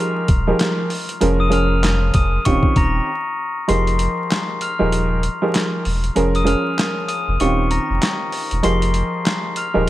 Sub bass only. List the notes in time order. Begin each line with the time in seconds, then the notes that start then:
0.29 D#1
1.22 F1
2.15 F1
2.47 D#1
2.63 D#1
2.77 D#1
3.69 F1
4.81 D#1
5.86 E1
6.17 F1
7.28 F1
7.41 D#1
7.90 F1
8.52 E1
8.65 F1
9.76 D#1